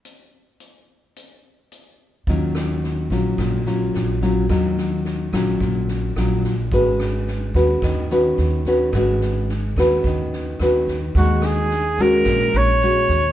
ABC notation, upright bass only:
X:1
M:4/4
L:1/8
Q:1/4=108
K:Ebm
V:1 name="Upright bass" clef=bass
z8 | E,,3 B,,, B,,,2 B,,,2 | E,,3 B,,, B,,,2 B,,,2 | A,,,3 E,, E,,2 E,,2 |
A,,,3 E,, E,,2 E,,2 | E,,4 B,,, B,,,2 E,, |]